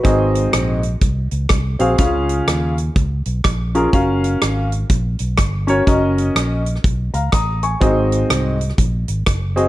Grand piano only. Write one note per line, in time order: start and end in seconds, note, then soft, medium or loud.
0.00 0.77 C4 medium
0.00 0.32 B4 medium
0.04 0.79 G#2 medium
0.04 0.78 F#4 medium
0.04 0.78 G#4 medium
0.04 0.78 D#5 medium
1.79 1.93 C4 medium
1.79 1.93 F#4 medium
1.79 1.93 G#4 medium
1.79 1.94 F5 medium
1.98 2.73 C#3 medium
1.98 2.72 C#4 medium
1.98 2.72 F4 medium
1.98 2.72 G#4 medium
1.98 2.73 F5 medium
3.75 3.88 C#4 medium
3.75 3.88 F4 medium
3.75 3.88 G#4 medium
3.75 3.88 A#4 medium
3.93 4.67 C#4 medium
3.93 4.67 F#4 medium
3.93 4.67 A#4 medium
3.93 4.67 F5 medium
5.67 5.81 C#4 medium
5.67 5.81 F#4 medium
5.67 5.82 A#4 medium
5.67 5.82 C#5 medium
5.87 6.60 C#4 medium
5.87 6.61 F#4 medium
5.87 6.61 A#4 medium
5.87 6.61 D#5 medium
7.14 7.32 F5 soft
7.14 7.32 A#5 medium
7.33 7.62 A#5 medium
7.33 7.61 D#6 medium
7.63 8.09 G#5 soft
7.63 8.09 C#6 medium
7.81 8.56 G#2 medium
7.81 8.54 C4 medium
7.81 8.55 F#4 medium
7.81 8.55 G#4 medium
7.81 8.55 D#5 medium
9.56 9.68 C4 medium
9.56 9.68 F#4 medium
9.56 9.68 G#4 medium
9.56 9.68 D#5 medium